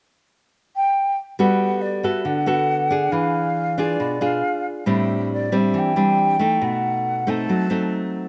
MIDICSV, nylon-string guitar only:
0, 0, Header, 1, 2, 480
1, 0, Start_track
1, 0, Key_signature, 1, "major"
1, 0, Tempo, 434468
1, 1537, Time_signature, 4, 2, 24, 8
1, 9153, End_track
2, 0, Start_track
2, 0, Title_t, "Nylon-string guitar"
2, 0, Program_c, 0, 24
2, 1534, Note_on_c, 0, 55, 66
2, 1537, Note_on_c, 0, 59, 51
2, 1543, Note_on_c, 0, 66, 54
2, 1546, Note_on_c, 0, 69, 61
2, 2219, Note_off_c, 0, 59, 0
2, 2222, Note_off_c, 0, 66, 0
2, 2223, Note_off_c, 0, 69, 0
2, 2247, Note_on_c, 0, 59, 51
2, 2256, Note_on_c, 0, 66, 56
2, 2258, Note_on_c, 0, 69, 55
2, 2473, Note_off_c, 0, 55, 0
2, 2485, Note_on_c, 0, 50, 65
2, 2696, Note_off_c, 0, 59, 0
2, 2697, Note_off_c, 0, 66, 0
2, 2700, Note_off_c, 0, 69, 0
2, 2721, Note_on_c, 0, 59, 54
2, 2727, Note_on_c, 0, 66, 52
2, 2732, Note_on_c, 0, 69, 63
2, 3172, Note_off_c, 0, 59, 0
2, 3174, Note_off_c, 0, 66, 0
2, 3177, Note_off_c, 0, 69, 0
2, 3208, Note_on_c, 0, 62, 62
2, 3222, Note_on_c, 0, 68, 60
2, 3428, Note_off_c, 0, 50, 0
2, 3449, Note_on_c, 0, 52, 65
2, 4136, Note_off_c, 0, 62, 0
2, 4142, Note_off_c, 0, 68, 0
2, 4172, Note_on_c, 0, 62, 61
2, 4181, Note_on_c, 0, 65, 52
2, 4189, Note_on_c, 0, 68, 64
2, 4390, Note_off_c, 0, 52, 0
2, 4416, Note_on_c, 0, 47, 65
2, 4618, Note_off_c, 0, 62, 0
2, 4620, Note_off_c, 0, 65, 0
2, 4626, Note_off_c, 0, 68, 0
2, 4650, Note_on_c, 0, 62, 57
2, 4655, Note_on_c, 0, 65, 53
2, 4657, Note_on_c, 0, 68, 56
2, 4874, Note_off_c, 0, 47, 0
2, 5337, Note_off_c, 0, 62, 0
2, 5338, Note_off_c, 0, 65, 0
2, 5340, Note_off_c, 0, 68, 0
2, 5371, Note_on_c, 0, 45, 69
2, 5376, Note_on_c, 0, 55, 52
2, 5377, Note_on_c, 0, 60, 59
2, 5384, Note_on_c, 0, 62, 63
2, 6058, Note_off_c, 0, 55, 0
2, 6061, Note_off_c, 0, 60, 0
2, 6062, Note_off_c, 0, 62, 0
2, 6098, Note_on_c, 0, 55, 59
2, 6104, Note_on_c, 0, 60, 60
2, 6108, Note_on_c, 0, 62, 59
2, 6311, Note_off_c, 0, 45, 0
2, 6340, Note_on_c, 0, 52, 63
2, 6540, Note_off_c, 0, 55, 0
2, 6543, Note_off_c, 0, 60, 0
2, 6545, Note_off_c, 0, 62, 0
2, 6586, Note_on_c, 0, 55, 56
2, 6590, Note_on_c, 0, 60, 53
2, 6594, Note_on_c, 0, 62, 61
2, 7024, Note_off_c, 0, 55, 0
2, 7026, Note_off_c, 0, 62, 0
2, 7027, Note_off_c, 0, 60, 0
2, 7063, Note_on_c, 0, 57, 58
2, 7079, Note_on_c, 0, 63, 57
2, 7275, Note_off_c, 0, 52, 0
2, 7307, Note_on_c, 0, 47, 69
2, 7982, Note_off_c, 0, 57, 0
2, 7989, Note_off_c, 0, 63, 0
2, 8029, Note_on_c, 0, 57, 53
2, 8034, Note_on_c, 0, 60, 56
2, 8041, Note_on_c, 0, 63, 62
2, 8238, Note_off_c, 0, 47, 0
2, 8279, Note_on_c, 0, 54, 63
2, 8464, Note_off_c, 0, 57, 0
2, 8467, Note_off_c, 0, 60, 0
2, 8470, Note_off_c, 0, 63, 0
2, 8503, Note_on_c, 0, 57, 52
2, 8510, Note_on_c, 0, 60, 54
2, 8514, Note_on_c, 0, 63, 55
2, 9153, Note_off_c, 0, 54, 0
2, 9153, Note_off_c, 0, 57, 0
2, 9153, Note_off_c, 0, 60, 0
2, 9153, Note_off_c, 0, 63, 0
2, 9153, End_track
0, 0, End_of_file